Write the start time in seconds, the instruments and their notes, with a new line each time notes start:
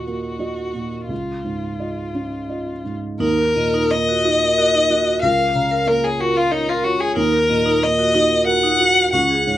Already playing: felt piano D#2 A#2 F#4 D#5, violin F#4
0.07 felt piano A#3
0.39 felt piano F#4 D#5
0.74 felt piano A#2
1.08 felt piano C#2, violin F4
1.44 felt piano G#2
1.79 felt piano F4 D#5
2.15 felt piano C#4
2.49 felt piano F4 D#5
2.85 felt piano G#2
3.19 felt piano D#2, vibraphone D#4, violin A#4
3.38 vibraphone A#4
3.55 felt piano A#2, vibraphone D#5
3.74 vibraphone D#4
3.91 felt piano A#3, vibraphone A#4, violin D#5
4.09 vibraphone F#4
4.25 vibraphone D#4, felt piano F#4
4.42 vibraphone A#4
4.58 vibraphone F#4, felt piano A#4
4.75 vibraphone D#4
4.90 felt piano F#4, vibraphone F#4
5.07 vibraphone F#4
5.22 felt piano C#2, vibraphone A#4, violin F5
5.39 vibraphone F5
5.55 felt piano C#3, vibraphone A#5
5.71 vibraphone A#4
5.87 felt piano A#3, violin A#4, vibraphone F5
6.03 violin G#4, vibraphone C#5
6.19 felt piano F4, violin F#4, vibraphone A#4
6.36 violin F4, vibraphone F5
6.52 violin D#4, felt piano A#4, vibraphone C#5
6.69 violin F4, vibraphone A#4
6.84 felt piano F4, violin F#4, vibraphone C#5
7.00 violin G#4, vibraphone C#5
7.16 felt piano D#2, vibraphone D#4, violin A#4
7.33 vibraphone A#4
7.49 felt piano A#2, vibraphone D#5
7.66 vibraphone D#4
7.83 felt piano A#3, vibraphone A#4, violin D#5
7.99 vibraphone F#4
8.15 vibraphone D#4, felt piano F#4
8.31 vibraphone A#4
8.47 vibraphone F#4, felt piano A#4, violin F#5
8.63 vibraphone D#4
8.80 felt piano F#4, vibraphone F#4
8.97 vibraphone F#4
9.13 felt piano C#2, vibraphone C#4, violin F#5
9.30 vibraphone G#4
9.47 felt piano G#2, vibraphone C#5